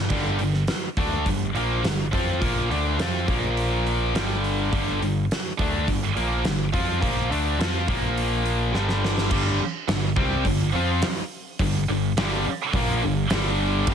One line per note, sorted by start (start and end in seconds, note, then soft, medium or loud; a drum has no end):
0.10 0.38 G1 medium
0.10 0.39 G2 medium
0.10 0.39 D3 medium
0.10 0.39 G3 loud
0.10 kick loud
0.10 open hi-hat medium
0.10 crash medium
0.39 0.66 G1 medium
0.39 0.64 G2 medium
0.39 0.64 D3 medium
0.39 open hi-hat soft
0.54 snare soft
0.67 snare loud
0.67 open hi-hat medium
0.97 1.24 D2 loud
0.97 1.26 D3 medium
0.97 1.26 A3 medium
0.97 1.26 D4 medium
0.97 kick medium
0.97 open hi-hat soft
1.26 1.53 G1 medium
1.26 1.50 G2 medium
1.26 1.51 D3 medium
1.26 kick medium
1.26 open hi-hat medium
1.54 1.81 A#1 medium
1.54 1.84 A#2 medium
1.54 1.84 F3 medium
1.54 1.84 A#3 medium
1.54 open hi-hat soft
1.82 2.11 G1 medium
1.82 2.06 G2 medium
1.82 snare loud
1.82 open hi-hat medium
1.87 2.08 G2 medium
1.87 2.09 D3 medium
2.13 2.40 F2 medium
2.13 2.42 F3 medium
2.13 2.42 C4 medium
2.13 2.42 F4 medium
2.13 kick medium
2.13 open hi-hat soft
2.42 2.69 A#1 medium
2.42 2.71 A#2 medium
2.42 2.71 F3 medium
2.42 2.71 A#3 loud
2.42 kick loud
2.42 open hi-hat medium
2.71 2.97 D2 medium
2.71 3.00 D3 medium
2.71 3.00 A3 medium
2.71 3.00 D4 medium
2.71 open hi-hat soft
2.99 3.26 F2 medium
2.99 3.28 F3 loud
2.99 3.28 C4 medium
2.99 3.28 F4 medium
2.99 snare loud
2.99 open hi-hat medium
3.28 4.11 A#1 loud
3.28 4.15 A#2 medium
3.28 4.15 F3 medium
3.28 4.15 A#3 medium
3.28 kick medium
3.28 open hi-hat medium
3.57 open hi-hat medium
3.87 open hi-hat soft
4.14 4.68 G1 medium
4.14 4.72 G2 medium
4.14 4.73 D3 medium
4.14 4.73 G3 medium
4.14 snare loud
4.14 open hi-hat medium
4.44 open hi-hat soft
4.73 4.99 G1 medium
4.73 5.01 G2 medium
4.73 5.01 D3 loud
4.73 5.01 G3 medium
4.73 kick loud
4.73 open hi-hat medium
5.01 5.28 G1 medium
5.01 5.25 G2 medium
5.01 5.25 D3 medium
5.01 open hi-hat soft
5.31 snare loud
5.31 open hi-hat medium
5.59 5.86 D2 loud
5.59 5.87 D3 medium
5.59 5.88 A3 medium
5.59 5.88 D4 medium
5.59 kick loud
5.59 open hi-hat soft
5.88 6.15 G1 medium
5.88 6.11 G2 medium
5.88 6.11 D3 medium
5.88 kick medium
5.88 open hi-hat medium
6.16 6.43 A#1 medium
6.16 6.44 A#2 medium
6.16 6.45 F3 medium
6.16 6.44 A#3 loud
6.16 open hi-hat soft
6.45 6.71 G1 medium
6.45 6.68 G2 medium
6.45 6.68 D3 medium
6.45 snare loud
6.45 open hi-hat medium
6.73 7.01 F2 medium
6.73 7.01 F3 medium
6.73 7.02 C4 medium
6.73 7.01 F4 medium
6.73 kick medium
6.73 open hi-hat soft
7.01 7.29 A#1 medium
7.01 7.30 A#2 medium
7.01 7.30 F3 medium
7.01 7.30 A#3 medium
7.01 kick medium
7.01 open hi-hat medium
7.30 7.57 D2 medium
7.30 7.59 D3 medium
7.30 7.59 A3 medium
7.30 7.59 D4 medium
7.30 open hi-hat soft
7.58 7.86 F2 medium
7.58 7.87 F3 medium
7.58 7.87 C4 medium
7.58 7.88 F4 medium
7.58 snare loud
7.58 open hi-hat medium
7.88 8.70 A#1 loud
7.88 8.73 A#2 medium
7.88 8.73 F3 medium
7.88 8.74 A#3 medium
7.88 kick loud
7.88 open hi-hat medium
8.18 open hi-hat medium
8.46 open hi-hat medium
8.74 9.27 G1 medium
8.74 9.30 G2 medium
8.74 9.31 D3 medium
8.74 9.31 G3 medium
8.74 snare medium
8.89 snare medium
9.04 snare medium
9.18 snare medium
9.31 9.58 G1 medium
9.31 9.59 G2 medium
9.31 9.59 D3 medium
9.31 9.59 G3 loud
9.31 kick loud
9.31 crash loud
9.61 muted picked electric bass stroke soft
9.61 muted distorted electric guitar stroke medium
9.88 10.15 G1 medium
9.88 10.11 G2 medium
9.88 10.12 D3 medium
9.88 snare loud
9.88 open hi-hat medium
10.16 10.44 C2 loud
10.16 10.44 C3 loud
10.16 10.44 G3 medium
10.16 10.45 C4 medium
10.16 kick loud
10.45 10.72 G1 medium
10.45 10.68 G2 medium
10.45 10.69 D3 medium
10.45 kick medium
10.45 open hi-hat medium
10.74 11.00 F2 medium
10.74 11.02 F3 medium
10.74 11.02 C4 loud
10.74 11.03 F4 loud
11.02 snare loud
11.02 open hi-hat medium
11.59 11.86 G1 medium
11.59 11.83 G2 medium
11.59 11.83 D3 medium
11.59 kick medium
11.59 open hi-hat medium
11.89 12.15 G1 medium
11.89 12.12 G2 medium
11.89 12.12 D3 medium
12.17 12.44 G1 medium
12.17 12.45 G2 loud
12.17 12.45 D3 loud
12.17 12.45 G3 loud
12.17 snare loud
12.17 open hi-hat medium
12.46 muted distorted electric guitar stroke medium
12.46 muted picked electric bass stroke soft
12.73 13.00 A#1 loud
12.73 13.02 A#2 medium
12.73 13.02 F3 medium
12.73 13.02 A#3 loud
12.73 kick loud
12.73 open hi-hat medium
13.02 13.30 G1 medium
13.02 13.25 G2 medium
13.02 13.25 D3 medium
13.30 13.85 G1 medium
13.30 13.87 G2 medium
13.30 13.87 D3 medium
13.30 13.87 G3 loud
13.30 snare loud
13.30 open hi-hat medium
13.87 13.94 G1 medium
13.87 13.94 G2 loud
13.87 13.94 D3 loud
13.87 13.94 G3 loud
13.87 kick loud
13.87 crash loud